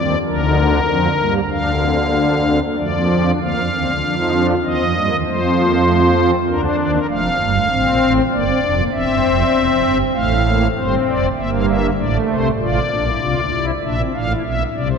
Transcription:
pipe organ
Already playing: D#2 D#3 C4 D5
0.26 D2 D3 D4 A#4
0.41 D#4
0.58 D4
0.89 F2 F3 C4
1.19 G2 G3 A#3
1.51 D2 D3 D4 F5
1.82 C4
1.99 A#3
2.15 D4
2.47 C4
2.62 A#3
2.77 F2 F3 A3 D5
2.94 A#3
3.08 C4
3.26 D4
3.40 D2 D3 A#3 F5
3.55 F2 F3
3.71 D#2 D#3 C4
3.87 D2 D3
4.01 F2 F3 D4
4.18 D#4
4.32 D4
4.64 D#2 D#3 C4 D#5
4.79 F2 F3
4.94 G2 G3 A#3
5.10 D#2 D#3
5.26 F2 F3 A3 C5
5.41 C4
5.56 A#3
5.87 A3
6.01 A#3
6.16 C4
6.47 D2 D3 D4 A#4
6.63 C5
6.78 D#2 D#3 D5
6.93 A#4
7.09 F1 F2 A3 F5
7.25 C4
7.39 G1 G2 A#3
7.55 A3
7.70 A1 A2 C4
7.85 A#1 A#2
8.01 A1 A2
8.32 G1 G2 A#3 D5
8.46 C4
8.61 F1 F2 D4
8.77 A#3
8.92 E1 E2 C4 E5
9.07 G1 G2
9.23 F1 F2
9.54 E1 E2
9.69 F1 F2
9.83 G1 G2
10.14 A1 A2 A3 F5
10.45 A#3
10.75 G1 G2 C4 C5
11.07 F1 F2 D5
11.37 G1 G2 A#3 E5
11.53 F5
11.67 E5
11.97 A1 A2 A3 D5
12.29 C2 C3 C5
12.59 A1 A2 F4 D5
12.91 A#1 A#2 D4
13.06 E4
13.21 C2 C3 F4
13.36 D2 D3
13.52 C2 C3 E4
13.83 A#1 A#2 D4 E5
13.99 C4
14.13 A1 A2 D4 F5
14.28 E4
14.44 B1 B2 E5
14.75 C2 C3 D5
14.89 C5

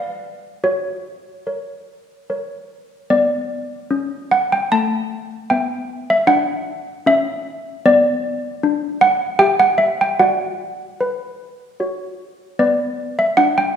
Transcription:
handbells
Already playing: B4 D5 F5
0.64 F#4 C#5
1.47 A#4 C#5
2.30 A#4 C#5
3.10 B3 D5
3.91 C#4
4.31 F#5
4.52 G5
4.72 A3 A5
5.50 B3 E5 G5
6.10 E5
6.27 D4 F#5
7.06 C#4 E5
7.86 B3 D5
8.63 D4
9.01 F#5
9.39 G4 E5 G5
9.60 F#5
9.78 E5
10.01 G5
10.19 F#4 D5 F#5
11.01 B4
11.80 F#4 C#5
12.59 B3 B4 D5
13.19 E5
13.37 D4 F#5
13.58 G5

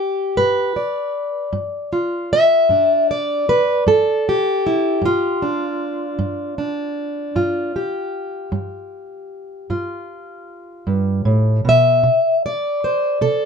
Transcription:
steel-string acoustic guitar
Already playing: G4
0.37 G2 B4
0.76 D5
1.53 G2
1.93 F4
2.33 E5
2.69 G2 D4
3.11 D5
3.49 B4
3.87 G2 A4
4.29 G4
4.67 E4
5.02 G2 F4
5.42 D4
6.19 G2
6.58 D4
7.36 G2 F4
7.76 G4
8.52 G2
9.70 G2 F4
10.87 G2
11.25 A2
11.65 B2
11.69 E5
12.03 C3
12.46 D5
12.84 C5
13.21 C3 A4

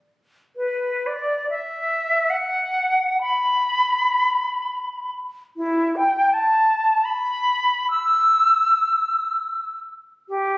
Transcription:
flute
0.56 B4
1.06 D5
1.50 E5
2.30 F#5
3.21 B5
5.56 E4
5.96 G5
6.33 A5
7.05 B5
7.90 E6
10.28 G4

